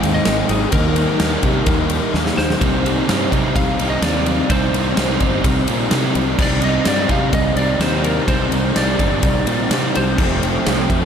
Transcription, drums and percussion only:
0.03 ride
0.25 snare, ride
0.49 ride
0.72 kick, ride
0.96 ride
1.20 snare, ride
1.43 kick, ride
1.66 kick, ride
1.90 ride
2.14 snare
2.26 snare
2.38 snare
2.50 snare
2.61 kick, ride
2.86 ride
3.09 snare, ride
3.32 kick, ride
3.56 kick, ride
3.79 ride
4.02 snare, ride
4.26 ride
4.50 kick, ride
4.74 ride
4.97 snare, ride
5.20 kick, ride
5.44 kick, ride
5.68 ride
5.91 snare, ride
6.15 ride
6.39 kick, crash
6.62 ride
6.85 snare, ride
7.09 kick, ride
7.33 kick, ride
7.57 ride
7.81 snare, ride
8.04 ride
8.28 kick, ride
8.52 ride
8.76 snare, ride
8.99 kick, ride
9.23 kick, ride
9.47 ride
9.71 snare, ride
9.95 ride
10.18 kick, crash
10.43 ride
10.66 snare, ride
10.90 kick, ride

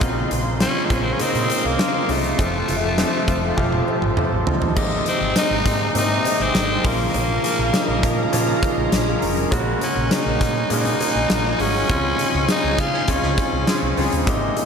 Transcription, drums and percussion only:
0.01 kick, closed hi-hat, cowbell
0.31 closed hi-hat
0.60 snare, closed hi-hat, cowbell
0.90 kick, closed hi-hat
1.19 closed hi-hat, cowbell
1.35 closed hi-hat
1.50 closed hi-hat, cowbell
1.79 snare, closed hi-hat, cowbell
2.09 open hi-hat, cowbell
2.24 closed hi-hat
2.39 kick, closed hi-hat, cowbell
2.68 closed hi-hat
2.98 snare, closed hi-hat, cowbell
3.28 kick, closed hi-hat
3.58 kick, high tom, cowbell
3.72 high tom
3.88 cowbell
4.02 mid tom
4.17 mid tom, cowbell
4.47 floor tom, cowbell
4.62 floor tom
4.76 kick, crash, cowbell
5.06 closed hi-hat
5.36 snare, closed hi-hat, tambourine, cowbell
5.66 kick, closed hi-hat
5.95 closed hi-hat, cowbell
6.25 closed hi-hat, cowbell
6.55 snare, closed hi-hat, tambourine, cowbell
6.85 kick, open hi-hat
7.14 closed hi-hat, cowbell
7.44 closed hi-hat
7.74 snare, closed hi-hat, tambourine, cowbell
8.03 kick, closed hi-hat
8.33 closed hi-hat, cowbell
8.63 kick, closed hi-hat, cowbell
8.92 snare, closed hi-hat, tambourine, cowbell
9.22 open hi-hat
9.37 closed hi-hat
9.52 kick, closed hi-hat, cowbell
9.81 closed hi-hat
10.11 snare, closed hi-hat, tambourine, cowbell
10.41 kick, closed hi-hat
10.70 closed hi-hat, cowbell
10.85 closed hi-hat
11.00 closed hi-hat, cowbell
11.30 snare, closed hi-hat, tambourine, cowbell
11.60 open hi-hat
11.89 kick, closed hi-hat, cowbell
12.19 closed hi-hat
12.48 snare, closed hi-hat, tambourine, cowbell
12.78 kick, closed hi-hat
13.08 kick, closed hi-hat, cowbell
13.38 kick, closed hi-hat, cowbell
13.67 snare, closed hi-hat, tambourine, cowbell
13.97 open hi-hat
14.13 closed hi-hat
14.27 kick, closed hi-hat, cowbell
14.57 closed hi-hat

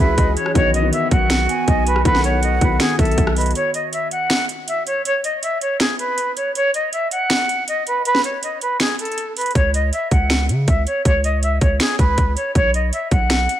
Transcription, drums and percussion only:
0.18 kick, closed hi-hat
0.37 closed hi-hat
0.46 cross-stick
0.55 kick, closed hi-hat
0.74 closed hi-hat
0.93 closed hi-hat
1.11 kick, closed hi-hat
1.30 finger snap, snare, closed hi-hat
1.49 closed hi-hat
1.68 kick, closed hi-hat
1.87 closed hi-hat
1.96 cross-stick
2.05 kick, closed hi-hat
2.15 snare
2.24 closed hi-hat
2.43 closed hi-hat
2.61 kick, closed hi-hat
2.80 finger snap, snare, closed hi-hat
2.99 kick, closed hi-hat
3.05 closed hi-hat
3.12 closed hi-hat
3.18 kick, closed hi-hat
3.27 cross-stick
3.36 closed hi-hat, open hi-hat
3.41 closed hi-hat
3.46 closed hi-hat
3.51 closed hi-hat
3.55 closed hi-hat
3.74 closed hi-hat
3.93 closed hi-hat
4.11 closed hi-hat
4.30 finger snap, snare, closed hi-hat
4.49 closed hi-hat
4.68 closed hi-hat
4.87 closed hi-hat
5.05 closed hi-hat
5.24 closed hi-hat
5.43 closed hi-hat
5.61 closed hi-hat
5.80 finger snap, snare, closed hi-hat
5.99 closed hi-hat
6.18 closed hi-hat
6.37 closed hi-hat
6.55 closed hi-hat
6.74 closed hi-hat
6.93 closed hi-hat
7.11 closed hi-hat
7.30 finger snap, snare, closed hi-hat
7.49 closed hi-hat
7.68 closed hi-hat
7.87 closed hi-hat
8.05 closed hi-hat
8.15 snare
8.24 closed hi-hat
8.43 closed hi-hat
8.61 closed hi-hat
8.80 finger snap, snare, closed hi-hat
8.99 closed hi-hat
9.05 closed hi-hat
9.12 closed hi-hat
9.18 closed hi-hat
9.37 closed hi-hat, open hi-hat
9.41 closed hi-hat
9.46 closed hi-hat
9.51 closed hi-hat
9.55 kick, closed hi-hat
9.74 closed hi-hat
9.93 closed hi-hat
10.11 kick, closed hi-hat
10.30 finger snap, snare, closed hi-hat
10.49 closed hi-hat
10.68 kick, closed hi-hat
10.87 closed hi-hat
11.05 kick, closed hi-hat
11.24 closed hi-hat
11.43 closed hi-hat
11.61 kick, closed hi-hat
11.80 finger snap, snare, closed hi-hat
11.99 kick, closed hi-hat
12.18 kick, closed hi-hat
12.37 closed hi-hat
12.55 kick, closed hi-hat
12.74 closed hi-hat
12.93 closed hi-hat
13.11 kick, closed hi-hat
13.30 finger snap, snare, closed hi-hat
13.49 closed hi-hat

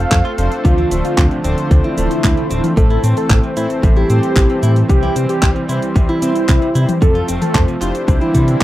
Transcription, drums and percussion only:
0.12 kick, clap, closed hi-hat, cabasa
0.25 closed hi-hat
0.38 closed hi-hat, cabasa
0.52 closed hi-hat, cabasa
0.65 kick, closed hi-hat, cabasa
0.78 closed hi-hat, high tom
0.91 closed hi-hat, cabasa
1.05 closed hi-hat, cabasa
1.18 kick, clap, closed hi-hat, cabasa
1.31 closed hi-hat
1.44 closed hi-hat, cabasa
1.58 closed hi-hat, cabasa
1.71 kick, closed hi-hat, cabasa
1.84 closed hi-hat
1.98 closed hi-hat, cabasa
2.11 closed hi-hat, cabasa
2.24 kick, clap, closed hi-hat, cabasa
2.37 closed hi-hat
2.51 closed hi-hat, cabasa
2.64 closed hi-hat, high tom, cabasa
2.77 kick, closed hi-hat, cabasa
2.90 closed hi-hat
3.04 closed hi-hat, cabasa
3.17 closed hi-hat, cabasa
3.30 kick, clap, closed hi-hat, cabasa
3.43 closed hi-hat
3.57 closed hi-hat, cabasa
3.70 closed hi-hat, cabasa
3.83 kick, closed hi-hat, cabasa
3.96 closed hi-hat
4.10 closed hi-hat, cabasa
4.23 closed hi-hat, cabasa
4.36 kick, clap, closed hi-hat, cabasa
4.50 closed hi-hat
4.63 closed hi-hat, cabasa
4.76 closed hi-hat, cabasa
4.89 kick, closed hi-hat, cabasa
5.03 closed hi-hat, high tom
5.16 closed hi-hat, cabasa
5.29 closed hi-hat, cabasa
5.43 kick, clap, closed hi-hat, cabasa
5.56 closed hi-hat
5.69 closed hi-hat, cabasa
5.82 closed hi-hat, cabasa
5.96 kick, closed hi-hat, cabasa
6.09 closed hi-hat
6.22 closed hi-hat, cabasa
6.35 closed hi-hat, cabasa
6.49 kick, clap, closed hi-hat, cabasa
6.62 closed hi-hat
6.75 closed hi-hat, cabasa
6.89 closed hi-hat, high tom, cabasa
7.02 kick, closed hi-hat, cabasa
7.15 closed hi-hat
7.28 closed hi-hat, cabasa
7.42 closed hi-hat, high tom, cabasa
7.55 kick, clap, closed hi-hat, cabasa
7.68 closed hi-hat, cabasa
7.82 clap, closed hi-hat, cabasa
7.95 closed hi-hat, cabasa
8.08 kick, closed hi-hat, cabasa
8.21 closed hi-hat
8.35 kick, closed hi-hat, cabasa
8.48 closed hi-hat, cabasa

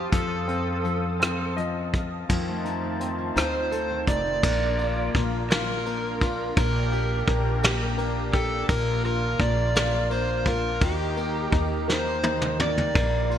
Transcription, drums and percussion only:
0.12 kick, closed hi-hat
0.48 closed hi-hat
0.85 closed hi-hat
1.21 cross-stick, closed hi-hat
1.58 closed hi-hat
1.94 kick, closed hi-hat
2.29 kick, crash
2.65 closed hi-hat
3.01 closed hi-hat
3.37 cross-stick, closed hi-hat
3.72 closed hi-hat
4.07 kick, closed hi-hat
4.43 kick, crash
4.79 ride
5.15 kick, snare, ride
5.51 snare, ride
5.86 ride
6.21 kick, ride
6.57 kick, ride
6.92 ride
7.28 kick, ride
7.63 snare, ride
7.98 ride
8.33 kick, ride
8.69 kick, ride
9.04 ride
9.39 kick, ride
9.75 snare, ride
10.11 ride
10.46 kick, ride
10.81 kick, ride
11.17 ride
11.52 kick, ride
11.89 snare
12.23 high tom
12.42 mid tom
12.60 mid tom
12.78 floor tom
12.95 kick, crash
13.31 ride

